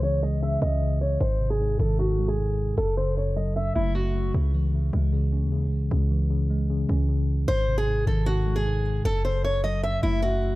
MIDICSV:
0, 0, Header, 1, 4, 480
1, 0, Start_track
1, 0, Key_signature, 4, "minor"
1, 0, Tempo, 392157
1, 1476, Time_signature, 4, 2, 24, 8
1, 12918, End_track
2, 0, Start_track
2, 0, Title_t, "Steel-string acoustic guitar"
2, 0, Program_c, 0, 25
2, 37, Note_on_c, 0, 73, 84
2, 244, Note_off_c, 0, 73, 0
2, 278, Note_on_c, 0, 75, 80
2, 485, Note_off_c, 0, 75, 0
2, 521, Note_on_c, 0, 76, 85
2, 726, Note_off_c, 0, 76, 0
2, 760, Note_on_c, 0, 75, 91
2, 1210, Note_off_c, 0, 75, 0
2, 1238, Note_on_c, 0, 73, 82
2, 1445, Note_off_c, 0, 73, 0
2, 1475, Note_on_c, 0, 72, 103
2, 1814, Note_off_c, 0, 72, 0
2, 1839, Note_on_c, 0, 68, 80
2, 2176, Note_off_c, 0, 68, 0
2, 2200, Note_on_c, 0, 69, 70
2, 2406, Note_off_c, 0, 69, 0
2, 2435, Note_on_c, 0, 66, 83
2, 2774, Note_off_c, 0, 66, 0
2, 2793, Note_on_c, 0, 68, 76
2, 3359, Note_off_c, 0, 68, 0
2, 3399, Note_on_c, 0, 69, 105
2, 3605, Note_off_c, 0, 69, 0
2, 3638, Note_on_c, 0, 72, 81
2, 3845, Note_off_c, 0, 72, 0
2, 3881, Note_on_c, 0, 73, 75
2, 4086, Note_off_c, 0, 73, 0
2, 4117, Note_on_c, 0, 75, 78
2, 4324, Note_off_c, 0, 75, 0
2, 4358, Note_on_c, 0, 76, 82
2, 4564, Note_off_c, 0, 76, 0
2, 4595, Note_on_c, 0, 64, 77
2, 4803, Note_off_c, 0, 64, 0
2, 4833, Note_on_c, 0, 66, 82
2, 5286, Note_off_c, 0, 66, 0
2, 9155, Note_on_c, 0, 72, 103
2, 9494, Note_off_c, 0, 72, 0
2, 9519, Note_on_c, 0, 68, 84
2, 9857, Note_off_c, 0, 68, 0
2, 9880, Note_on_c, 0, 69, 72
2, 10086, Note_off_c, 0, 69, 0
2, 10114, Note_on_c, 0, 66, 86
2, 10453, Note_off_c, 0, 66, 0
2, 10474, Note_on_c, 0, 68, 75
2, 11039, Note_off_c, 0, 68, 0
2, 11079, Note_on_c, 0, 69, 101
2, 11285, Note_off_c, 0, 69, 0
2, 11317, Note_on_c, 0, 72, 80
2, 11524, Note_off_c, 0, 72, 0
2, 11560, Note_on_c, 0, 73, 76
2, 11766, Note_off_c, 0, 73, 0
2, 11796, Note_on_c, 0, 75, 80
2, 12004, Note_off_c, 0, 75, 0
2, 12037, Note_on_c, 0, 76, 82
2, 12244, Note_off_c, 0, 76, 0
2, 12275, Note_on_c, 0, 64, 78
2, 12483, Note_off_c, 0, 64, 0
2, 12514, Note_on_c, 0, 66, 81
2, 12918, Note_off_c, 0, 66, 0
2, 12918, End_track
3, 0, Start_track
3, 0, Title_t, "Tine electric piano"
3, 0, Program_c, 1, 4
3, 0, Control_c, 1, 64, 127
3, 0, Note_on_c, 1, 49, 96
3, 0, Note_on_c, 1, 52, 80
3, 0, Note_on_c, 1, 56, 89
3, 0, Note_on_c, 1, 61, 87
3, 36, Note_off_c, 1, 49, 0
3, 36, Note_on_c, 1, 49, 83
3, 279, Note_off_c, 1, 56, 0
3, 279, Note_on_c, 1, 56, 83
3, 502, Note_off_c, 1, 49, 0
3, 517, Note_on_c, 1, 49, 92
3, 755, Note_off_c, 1, 61, 0
3, 755, Note_on_c, 1, 61, 88
3, 984, Note_off_c, 1, 49, 0
3, 996, Note_off_c, 1, 52, 0
3, 998, Note_on_c, 1, 49, 84
3, 1476, Note_off_c, 1, 61, 0
3, 1477, Note_off_c, 1, 49, 0
3, 1477, Note_on_c, 1, 44, 92
3, 1478, Note_off_c, 1, 56, 0
3, 1489, Control_c, 1, 64, 0
3, 1716, Note_on_c, 1, 48, 79
3, 1722, Control_c, 1, 64, 127
3, 1940, Note_off_c, 1, 44, 0
3, 1955, Note_on_c, 1, 44, 82
3, 2198, Note_on_c, 1, 51, 87
3, 2422, Note_off_c, 1, 44, 0
3, 2437, Note_on_c, 1, 44, 78
3, 2676, Note_on_c, 1, 56, 87
3, 2904, Note_off_c, 1, 44, 0
3, 2916, Note_off_c, 1, 48, 0
3, 2918, Note_on_c, 1, 44, 85
3, 3396, Note_off_c, 1, 56, 0
3, 3397, Note_off_c, 1, 44, 0
3, 3397, Note_off_c, 1, 51, 0
3, 3399, Note_on_c, 1, 42, 89
3, 3413, Control_c, 1, 64, 0
3, 3636, Note_on_c, 1, 49, 76
3, 3650, Control_c, 1, 64, 127
3, 3860, Note_off_c, 1, 42, 0
3, 3875, Note_on_c, 1, 42, 78
3, 4116, Note_on_c, 1, 54, 85
3, 4344, Note_off_c, 1, 42, 0
3, 4359, Note_on_c, 1, 42, 78
3, 4598, Note_on_c, 1, 57, 92
3, 4822, Note_off_c, 1, 42, 0
3, 4837, Note_off_c, 1, 49, 0
3, 4837, Note_on_c, 1, 42, 73
3, 5316, Note_off_c, 1, 54, 0
3, 5317, Note_off_c, 1, 42, 0
3, 5317, Note_off_c, 1, 57, 0
3, 5320, Note_on_c, 1, 49, 92
3, 5334, Control_c, 1, 64, 0
3, 5556, Note_on_c, 1, 52, 82
3, 5570, Control_c, 1, 64, 127
3, 5782, Note_off_c, 1, 49, 0
3, 5796, Note_on_c, 1, 49, 80
3, 6038, Note_on_c, 1, 56, 90
3, 6262, Note_off_c, 1, 49, 0
3, 6276, Note_on_c, 1, 49, 94
3, 6519, Note_on_c, 1, 61, 84
3, 6743, Note_off_c, 1, 49, 0
3, 6756, Note_off_c, 1, 52, 0
3, 6757, Note_on_c, 1, 49, 82
3, 7222, Note_off_c, 1, 49, 0
3, 7236, Note_on_c, 1, 49, 94
3, 7237, Note_off_c, 1, 56, 0
3, 7476, Note_on_c, 1, 52, 84
3, 7702, Note_off_c, 1, 49, 0
3, 7717, Note_on_c, 1, 49, 83
3, 7718, Note_off_c, 1, 61, 0
3, 7960, Note_on_c, 1, 56, 83
3, 8182, Note_off_c, 1, 49, 0
3, 8197, Note_on_c, 1, 49, 91
3, 8436, Note_on_c, 1, 61, 90
3, 8664, Note_off_c, 1, 49, 0
3, 8676, Note_off_c, 1, 52, 0
3, 8679, Note_on_c, 1, 49, 85
3, 9156, Note_off_c, 1, 61, 0
3, 9156, Note_on_c, 1, 44, 93
3, 9158, Note_off_c, 1, 49, 0
3, 9158, Note_off_c, 1, 56, 0
3, 9171, Control_c, 1, 64, 0
3, 9359, Control_c, 1, 64, 127
3, 9396, Note_on_c, 1, 48, 81
3, 9620, Note_off_c, 1, 44, 0
3, 9634, Note_on_c, 1, 44, 79
3, 9877, Note_on_c, 1, 51, 89
3, 10102, Note_off_c, 1, 44, 0
3, 10116, Note_on_c, 1, 44, 80
3, 10356, Note_on_c, 1, 56, 84
3, 10584, Note_off_c, 1, 44, 0
3, 10596, Note_off_c, 1, 48, 0
3, 10599, Note_on_c, 1, 44, 83
3, 11076, Note_off_c, 1, 56, 0
3, 11077, Note_off_c, 1, 51, 0
3, 11078, Note_off_c, 1, 44, 0
3, 11079, Note_on_c, 1, 42, 89
3, 11095, Control_c, 1, 64, 0
3, 11316, Note_on_c, 1, 49, 76
3, 11319, Control_c, 1, 64, 127
3, 11541, Note_off_c, 1, 42, 0
3, 11556, Note_on_c, 1, 42, 78
3, 11797, Note_on_c, 1, 54, 84
3, 12024, Note_off_c, 1, 42, 0
3, 12038, Note_on_c, 1, 42, 81
3, 12278, Note_on_c, 1, 57, 90
3, 12502, Note_off_c, 1, 42, 0
3, 12516, Note_off_c, 1, 49, 0
3, 12517, Note_on_c, 1, 42, 75
3, 12918, Note_off_c, 1, 42, 0
3, 12918, Note_off_c, 1, 54, 0
3, 12918, Note_off_c, 1, 57, 0
3, 12918, End_track
4, 0, Start_track
4, 0, Title_t, "808-style bass"
4, 0, Program_c, 2, 38
4, 0, Note_on_c, 2, 37, 111
4, 709, Note_off_c, 2, 37, 0
4, 756, Note_on_c, 2, 37, 104
4, 1448, Note_off_c, 2, 37, 0
4, 1476, Note_on_c, 2, 32, 108
4, 2168, Note_off_c, 2, 32, 0
4, 2196, Note_on_c, 2, 32, 105
4, 3348, Note_off_c, 2, 32, 0
4, 3397, Note_on_c, 2, 30, 109
4, 4549, Note_off_c, 2, 30, 0
4, 4596, Note_on_c, 2, 30, 106
4, 5288, Note_off_c, 2, 30, 0
4, 5316, Note_on_c, 2, 37, 115
4, 6008, Note_off_c, 2, 37, 0
4, 6037, Note_on_c, 2, 37, 107
4, 6637, Note_on_c, 2, 39, 101
4, 6655, Note_off_c, 2, 37, 0
4, 6937, Note_on_c, 2, 37, 102
4, 6955, Note_off_c, 2, 39, 0
4, 7222, Note_off_c, 2, 37, 0
4, 7237, Note_on_c, 2, 37, 115
4, 8389, Note_off_c, 2, 37, 0
4, 8436, Note_on_c, 2, 37, 101
4, 9128, Note_off_c, 2, 37, 0
4, 9156, Note_on_c, 2, 32, 109
4, 9848, Note_off_c, 2, 32, 0
4, 9876, Note_on_c, 2, 32, 108
4, 11028, Note_off_c, 2, 32, 0
4, 11076, Note_on_c, 2, 30, 111
4, 12228, Note_off_c, 2, 30, 0
4, 12276, Note_on_c, 2, 30, 103
4, 12918, Note_off_c, 2, 30, 0
4, 12918, End_track
0, 0, End_of_file